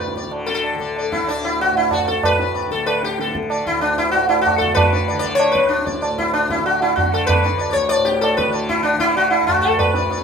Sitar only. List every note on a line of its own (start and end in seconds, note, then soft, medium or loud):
0.00 0.12 B4 medium
0.00 0.14 D5 soft
0.17 0.31 D5 soft
0.46 0.53 A4 medium
0.54 1.00 A4 medium
0.80 0.95 D5 soft
0.98 1.11 D5 soft
1.12 1.28 E4 medium
1.12 1.27 D5 soft
1.28 1.44 D4 medium
1.28 1.43 D5 soft
1.44 1.59 E4 medium
1.44 1.59 D5 soft
1.61 1.76 F#4 medium
1.77 1.93 E4 medium
1.92 2.07 F#4 medium
1.92 2.07 D5 soft
2.08 2.24 A4 medium
2.25 2.71 B4 loud
2.40 2.53 D5 soft
2.54 2.70 D5 soft
2.72 2.86 A4 medium
2.86 3.03 B4 medium
3.04 3.20 G4 medium
3.21 3.34 A4 medium
3.51 3.65 D5 soft
3.67 3.81 E4 medium
3.81 3.98 D4 medium
3.98 4.11 E4 medium
4.11 4.28 F#4 medium
4.29 4.41 E4 medium
4.41 4.60 F#4 medium
4.58 4.74 A4 medium
4.75 5.25 B4 loud
4.92 5.07 D5 soft
5.08 5.18 D5 soft
5.19 5.35 D5 loud
5.35 5.52 C#5 loud
5.52 5.70 B4 medium
5.69 5.85 D4 medium
5.86 5.99 D5 soft
6.01 6.16 D5 soft
6.18 6.33 E4 medium
6.33 6.50 D4 medium
6.50 6.65 E4 medium
6.66 6.82 F#4 medium
6.82 6.95 E4 medium
6.96 7.13 F#4 medium
7.14 7.26 A4 medium
7.27 7.72 B4 loud
7.43 7.57 D5 soft
7.58 7.69 D5 soft
7.70 7.89 C#5 loud
7.70 7.75 D5 medium
7.89 8.06 D5 loud
8.05 8.21 G4 medium
8.21 8.37 A4 loud
8.37 8.52 B4 medium
8.52 8.67 D5 soft
8.69 8.83 E4 medium
8.83 8.99 D4 medium
9.00 9.16 E4 loud
9.17 9.30 F#4 medium
9.30 9.46 E4 medium
9.47 9.63 F#4 medium
9.62 9.78 A4 medium
9.79 10.22 B4 loud
9.95 10.09 D5 soft
10.11 10.23 D5 soft